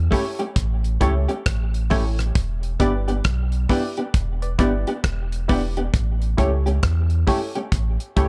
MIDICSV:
0, 0, Header, 1, 5, 480
1, 0, Start_track
1, 0, Tempo, 894188
1, 1265, Time_signature, 4, 2, 24, 8
1, 4447, End_track
2, 0, Start_track
2, 0, Title_t, "Synth stab"
2, 0, Program_c, 0, 62
2, 62, Note_on_c, 0, 64, 89
2, 64, Note_on_c, 0, 67, 82
2, 66, Note_on_c, 0, 69, 83
2, 69, Note_on_c, 0, 73, 99
2, 206, Note_off_c, 0, 64, 0
2, 207, Note_off_c, 0, 67, 0
2, 208, Note_off_c, 0, 69, 0
2, 209, Note_off_c, 0, 73, 0
2, 540, Note_on_c, 0, 64, 95
2, 543, Note_on_c, 0, 67, 86
2, 545, Note_on_c, 0, 69, 82
2, 547, Note_on_c, 0, 73, 102
2, 685, Note_off_c, 0, 64, 0
2, 686, Note_off_c, 0, 67, 0
2, 687, Note_off_c, 0, 69, 0
2, 688, Note_off_c, 0, 73, 0
2, 1021, Note_on_c, 0, 64, 92
2, 1022, Note_on_c, 0, 67, 79
2, 1024, Note_on_c, 0, 69, 84
2, 1027, Note_on_c, 0, 73, 100
2, 1165, Note_off_c, 0, 64, 0
2, 1166, Note_off_c, 0, 67, 0
2, 1167, Note_off_c, 0, 69, 0
2, 1168, Note_off_c, 0, 73, 0
2, 1501, Note_on_c, 0, 64, 90
2, 1504, Note_on_c, 0, 67, 86
2, 1506, Note_on_c, 0, 71, 86
2, 1508, Note_on_c, 0, 74, 103
2, 1646, Note_off_c, 0, 64, 0
2, 1647, Note_off_c, 0, 67, 0
2, 1648, Note_off_c, 0, 71, 0
2, 1649, Note_off_c, 0, 74, 0
2, 1982, Note_on_c, 0, 64, 92
2, 1984, Note_on_c, 0, 67, 80
2, 1986, Note_on_c, 0, 71, 82
2, 1988, Note_on_c, 0, 74, 101
2, 2126, Note_off_c, 0, 64, 0
2, 2127, Note_off_c, 0, 67, 0
2, 2128, Note_off_c, 0, 71, 0
2, 2129, Note_off_c, 0, 74, 0
2, 2374, Note_on_c, 0, 71, 40
2, 2374, Note_on_c, 0, 74, 46
2, 2410, Note_off_c, 0, 71, 0
2, 2410, Note_off_c, 0, 74, 0
2, 2461, Note_on_c, 0, 64, 90
2, 2463, Note_on_c, 0, 67, 86
2, 2465, Note_on_c, 0, 71, 85
2, 2468, Note_on_c, 0, 74, 98
2, 2606, Note_off_c, 0, 64, 0
2, 2606, Note_off_c, 0, 67, 0
2, 2608, Note_off_c, 0, 71, 0
2, 2609, Note_off_c, 0, 74, 0
2, 2942, Note_on_c, 0, 64, 90
2, 2945, Note_on_c, 0, 67, 82
2, 2947, Note_on_c, 0, 71, 84
2, 2949, Note_on_c, 0, 74, 95
2, 3086, Note_off_c, 0, 64, 0
2, 3088, Note_off_c, 0, 67, 0
2, 3088, Note_off_c, 0, 71, 0
2, 3090, Note_off_c, 0, 74, 0
2, 3421, Note_on_c, 0, 64, 91
2, 3424, Note_on_c, 0, 67, 89
2, 3426, Note_on_c, 0, 69, 82
2, 3428, Note_on_c, 0, 73, 104
2, 3566, Note_off_c, 0, 64, 0
2, 3567, Note_off_c, 0, 67, 0
2, 3568, Note_off_c, 0, 69, 0
2, 3569, Note_off_c, 0, 73, 0
2, 3901, Note_on_c, 0, 64, 93
2, 3904, Note_on_c, 0, 67, 85
2, 3906, Note_on_c, 0, 69, 84
2, 3908, Note_on_c, 0, 73, 98
2, 4046, Note_off_c, 0, 64, 0
2, 4047, Note_off_c, 0, 67, 0
2, 4048, Note_off_c, 0, 69, 0
2, 4049, Note_off_c, 0, 73, 0
2, 4382, Note_on_c, 0, 64, 92
2, 4385, Note_on_c, 0, 67, 88
2, 4387, Note_on_c, 0, 69, 84
2, 4390, Note_on_c, 0, 73, 97
2, 4447, Note_off_c, 0, 64, 0
2, 4447, Note_off_c, 0, 67, 0
2, 4447, Note_off_c, 0, 69, 0
2, 4447, Note_off_c, 0, 73, 0
2, 4447, End_track
3, 0, Start_track
3, 0, Title_t, "Clean electric guitar"
3, 0, Program_c, 1, 27
3, 58, Note_on_c, 1, 57, 85
3, 63, Note_on_c, 1, 61, 86
3, 64, Note_on_c, 1, 67, 90
3, 125, Note_off_c, 1, 57, 0
3, 127, Note_off_c, 1, 61, 0
3, 128, Note_off_c, 1, 67, 0
3, 211, Note_on_c, 1, 67, 58
3, 213, Note_on_c, 1, 61, 46
3, 216, Note_on_c, 1, 57, 43
3, 223, Note_off_c, 1, 67, 0
3, 224, Note_off_c, 1, 61, 0
3, 226, Note_off_c, 1, 57, 0
3, 540, Note_on_c, 1, 57, 80
3, 546, Note_on_c, 1, 61, 79
3, 547, Note_on_c, 1, 67, 83
3, 606, Note_off_c, 1, 57, 0
3, 609, Note_off_c, 1, 61, 0
3, 610, Note_off_c, 1, 67, 0
3, 690, Note_on_c, 1, 67, 63
3, 694, Note_on_c, 1, 61, 61
3, 699, Note_on_c, 1, 57, 48
3, 703, Note_off_c, 1, 67, 0
3, 705, Note_off_c, 1, 61, 0
3, 710, Note_off_c, 1, 57, 0
3, 1023, Note_on_c, 1, 57, 81
3, 1027, Note_on_c, 1, 61, 81
3, 1029, Note_on_c, 1, 67, 89
3, 1088, Note_off_c, 1, 57, 0
3, 1089, Note_off_c, 1, 61, 0
3, 1091, Note_off_c, 1, 67, 0
3, 1501, Note_on_c, 1, 59, 82
3, 1504, Note_on_c, 1, 62, 77
3, 1508, Note_on_c, 1, 67, 78
3, 1567, Note_off_c, 1, 59, 0
3, 1568, Note_off_c, 1, 62, 0
3, 1570, Note_off_c, 1, 67, 0
3, 1652, Note_on_c, 1, 67, 59
3, 1656, Note_on_c, 1, 62, 54
3, 1660, Note_on_c, 1, 59, 53
3, 1664, Note_off_c, 1, 67, 0
3, 1666, Note_off_c, 1, 62, 0
3, 1671, Note_off_c, 1, 59, 0
3, 1985, Note_on_c, 1, 59, 83
3, 1988, Note_on_c, 1, 62, 87
3, 1992, Note_on_c, 1, 67, 87
3, 2049, Note_off_c, 1, 59, 0
3, 2050, Note_off_c, 1, 62, 0
3, 2052, Note_off_c, 1, 67, 0
3, 2134, Note_on_c, 1, 67, 54
3, 2139, Note_on_c, 1, 62, 51
3, 2143, Note_on_c, 1, 59, 49
3, 2145, Note_off_c, 1, 67, 0
3, 2150, Note_off_c, 1, 62, 0
3, 2154, Note_off_c, 1, 59, 0
3, 2469, Note_on_c, 1, 59, 85
3, 2472, Note_on_c, 1, 62, 81
3, 2476, Note_on_c, 1, 67, 82
3, 2531, Note_off_c, 1, 59, 0
3, 2532, Note_off_c, 1, 62, 0
3, 2534, Note_off_c, 1, 67, 0
3, 2617, Note_on_c, 1, 67, 71
3, 2622, Note_on_c, 1, 62, 58
3, 2624, Note_on_c, 1, 59, 50
3, 2628, Note_off_c, 1, 67, 0
3, 2633, Note_off_c, 1, 62, 0
3, 2635, Note_off_c, 1, 59, 0
3, 2949, Note_on_c, 1, 59, 91
3, 2954, Note_on_c, 1, 62, 96
3, 2957, Note_on_c, 1, 67, 91
3, 3011, Note_off_c, 1, 59, 0
3, 3013, Note_off_c, 1, 62, 0
3, 3015, Note_off_c, 1, 67, 0
3, 3098, Note_on_c, 1, 67, 58
3, 3101, Note_on_c, 1, 62, 51
3, 3106, Note_on_c, 1, 59, 45
3, 3109, Note_off_c, 1, 67, 0
3, 3112, Note_off_c, 1, 62, 0
3, 3116, Note_off_c, 1, 59, 0
3, 3425, Note_on_c, 1, 57, 77
3, 3431, Note_on_c, 1, 61, 78
3, 3434, Note_on_c, 1, 67, 80
3, 3489, Note_off_c, 1, 57, 0
3, 3492, Note_off_c, 1, 61, 0
3, 3493, Note_off_c, 1, 67, 0
3, 3575, Note_on_c, 1, 67, 60
3, 3580, Note_on_c, 1, 61, 61
3, 3582, Note_on_c, 1, 57, 50
3, 3586, Note_off_c, 1, 67, 0
3, 3590, Note_off_c, 1, 61, 0
3, 3593, Note_off_c, 1, 57, 0
3, 3904, Note_on_c, 1, 57, 81
3, 3907, Note_on_c, 1, 61, 84
3, 3910, Note_on_c, 1, 67, 87
3, 3968, Note_off_c, 1, 57, 0
3, 3970, Note_off_c, 1, 61, 0
3, 3972, Note_off_c, 1, 67, 0
3, 4055, Note_on_c, 1, 67, 58
3, 4060, Note_on_c, 1, 61, 51
3, 4063, Note_on_c, 1, 57, 43
3, 4066, Note_off_c, 1, 67, 0
3, 4071, Note_off_c, 1, 61, 0
3, 4074, Note_off_c, 1, 57, 0
3, 4384, Note_on_c, 1, 57, 75
3, 4389, Note_on_c, 1, 61, 74
3, 4393, Note_on_c, 1, 67, 77
3, 4447, Note_off_c, 1, 57, 0
3, 4447, Note_off_c, 1, 61, 0
3, 4447, Note_off_c, 1, 67, 0
3, 4447, End_track
4, 0, Start_track
4, 0, Title_t, "Sub bass"
4, 0, Program_c, 2, 38
4, 303, Note_on_c, 2, 33, 113
4, 526, Note_off_c, 2, 33, 0
4, 544, Note_on_c, 2, 37, 97
4, 683, Note_off_c, 2, 37, 0
4, 787, Note_on_c, 2, 33, 86
4, 1244, Note_off_c, 2, 33, 0
4, 1265, Note_on_c, 2, 28, 99
4, 1487, Note_off_c, 2, 28, 0
4, 1505, Note_on_c, 2, 31, 90
4, 1727, Note_off_c, 2, 31, 0
4, 1746, Note_on_c, 2, 35, 95
4, 1968, Note_off_c, 2, 35, 0
4, 2225, Note_on_c, 2, 28, 109
4, 2448, Note_off_c, 2, 28, 0
4, 2464, Note_on_c, 2, 31, 90
4, 2603, Note_off_c, 2, 31, 0
4, 2707, Note_on_c, 2, 28, 89
4, 3165, Note_off_c, 2, 28, 0
4, 3189, Note_on_c, 2, 33, 104
4, 3410, Note_off_c, 2, 33, 0
4, 3428, Note_on_c, 2, 37, 85
4, 3649, Note_off_c, 2, 37, 0
4, 3670, Note_on_c, 2, 40, 96
4, 3890, Note_off_c, 2, 40, 0
4, 4146, Note_on_c, 2, 33, 107
4, 4284, Note_off_c, 2, 33, 0
4, 4385, Note_on_c, 2, 37, 85
4, 4447, Note_off_c, 2, 37, 0
4, 4447, End_track
5, 0, Start_track
5, 0, Title_t, "Drums"
5, 64, Note_on_c, 9, 36, 78
5, 68, Note_on_c, 9, 46, 84
5, 118, Note_off_c, 9, 36, 0
5, 121, Note_off_c, 9, 46, 0
5, 212, Note_on_c, 9, 42, 50
5, 265, Note_off_c, 9, 42, 0
5, 301, Note_on_c, 9, 36, 107
5, 301, Note_on_c, 9, 42, 91
5, 354, Note_off_c, 9, 42, 0
5, 355, Note_off_c, 9, 36, 0
5, 453, Note_on_c, 9, 42, 49
5, 506, Note_off_c, 9, 42, 0
5, 542, Note_on_c, 9, 36, 87
5, 543, Note_on_c, 9, 42, 68
5, 596, Note_off_c, 9, 36, 0
5, 597, Note_off_c, 9, 42, 0
5, 692, Note_on_c, 9, 42, 48
5, 746, Note_off_c, 9, 42, 0
5, 783, Note_on_c, 9, 42, 94
5, 784, Note_on_c, 9, 36, 104
5, 785, Note_on_c, 9, 37, 109
5, 837, Note_off_c, 9, 36, 0
5, 837, Note_off_c, 9, 42, 0
5, 839, Note_off_c, 9, 37, 0
5, 936, Note_on_c, 9, 42, 55
5, 989, Note_off_c, 9, 42, 0
5, 1021, Note_on_c, 9, 46, 74
5, 1026, Note_on_c, 9, 36, 82
5, 1075, Note_off_c, 9, 46, 0
5, 1080, Note_off_c, 9, 36, 0
5, 1174, Note_on_c, 9, 42, 50
5, 1176, Note_on_c, 9, 37, 61
5, 1228, Note_off_c, 9, 42, 0
5, 1230, Note_off_c, 9, 37, 0
5, 1263, Note_on_c, 9, 42, 80
5, 1264, Note_on_c, 9, 36, 116
5, 1317, Note_off_c, 9, 36, 0
5, 1317, Note_off_c, 9, 42, 0
5, 1412, Note_on_c, 9, 42, 46
5, 1466, Note_off_c, 9, 42, 0
5, 1502, Note_on_c, 9, 42, 70
5, 1503, Note_on_c, 9, 36, 88
5, 1556, Note_off_c, 9, 36, 0
5, 1556, Note_off_c, 9, 42, 0
5, 1655, Note_on_c, 9, 42, 45
5, 1709, Note_off_c, 9, 42, 0
5, 1741, Note_on_c, 9, 42, 83
5, 1744, Note_on_c, 9, 36, 113
5, 1744, Note_on_c, 9, 37, 102
5, 1795, Note_off_c, 9, 42, 0
5, 1797, Note_off_c, 9, 37, 0
5, 1798, Note_off_c, 9, 36, 0
5, 1889, Note_on_c, 9, 42, 49
5, 1943, Note_off_c, 9, 42, 0
5, 1983, Note_on_c, 9, 36, 81
5, 1985, Note_on_c, 9, 46, 82
5, 2037, Note_off_c, 9, 36, 0
5, 2038, Note_off_c, 9, 46, 0
5, 2131, Note_on_c, 9, 42, 52
5, 2185, Note_off_c, 9, 42, 0
5, 2223, Note_on_c, 9, 36, 109
5, 2224, Note_on_c, 9, 42, 87
5, 2276, Note_off_c, 9, 36, 0
5, 2278, Note_off_c, 9, 42, 0
5, 2374, Note_on_c, 9, 42, 47
5, 2428, Note_off_c, 9, 42, 0
5, 2463, Note_on_c, 9, 36, 93
5, 2464, Note_on_c, 9, 42, 73
5, 2517, Note_off_c, 9, 36, 0
5, 2517, Note_off_c, 9, 42, 0
5, 2615, Note_on_c, 9, 42, 47
5, 2669, Note_off_c, 9, 42, 0
5, 2705, Note_on_c, 9, 36, 109
5, 2706, Note_on_c, 9, 42, 88
5, 2707, Note_on_c, 9, 37, 110
5, 2758, Note_off_c, 9, 36, 0
5, 2759, Note_off_c, 9, 42, 0
5, 2761, Note_off_c, 9, 37, 0
5, 2858, Note_on_c, 9, 42, 55
5, 2912, Note_off_c, 9, 42, 0
5, 2946, Note_on_c, 9, 46, 70
5, 2949, Note_on_c, 9, 36, 83
5, 3000, Note_off_c, 9, 46, 0
5, 3003, Note_off_c, 9, 36, 0
5, 3097, Note_on_c, 9, 42, 53
5, 3151, Note_off_c, 9, 42, 0
5, 3187, Note_on_c, 9, 36, 112
5, 3188, Note_on_c, 9, 42, 80
5, 3240, Note_off_c, 9, 36, 0
5, 3242, Note_off_c, 9, 42, 0
5, 3337, Note_on_c, 9, 42, 48
5, 3391, Note_off_c, 9, 42, 0
5, 3426, Note_on_c, 9, 36, 89
5, 3429, Note_on_c, 9, 42, 69
5, 3480, Note_off_c, 9, 36, 0
5, 3482, Note_off_c, 9, 42, 0
5, 3579, Note_on_c, 9, 42, 45
5, 3633, Note_off_c, 9, 42, 0
5, 3665, Note_on_c, 9, 42, 86
5, 3666, Note_on_c, 9, 36, 116
5, 3668, Note_on_c, 9, 37, 105
5, 3719, Note_off_c, 9, 42, 0
5, 3720, Note_off_c, 9, 36, 0
5, 3722, Note_off_c, 9, 37, 0
5, 3811, Note_on_c, 9, 42, 50
5, 3864, Note_off_c, 9, 42, 0
5, 3905, Note_on_c, 9, 36, 81
5, 3908, Note_on_c, 9, 46, 85
5, 3959, Note_off_c, 9, 36, 0
5, 3962, Note_off_c, 9, 46, 0
5, 4055, Note_on_c, 9, 42, 49
5, 4109, Note_off_c, 9, 42, 0
5, 4144, Note_on_c, 9, 36, 110
5, 4145, Note_on_c, 9, 42, 89
5, 4198, Note_off_c, 9, 36, 0
5, 4198, Note_off_c, 9, 42, 0
5, 4295, Note_on_c, 9, 42, 51
5, 4349, Note_off_c, 9, 42, 0
5, 4384, Note_on_c, 9, 36, 89
5, 4385, Note_on_c, 9, 42, 65
5, 4438, Note_off_c, 9, 36, 0
5, 4438, Note_off_c, 9, 42, 0
5, 4447, End_track
0, 0, End_of_file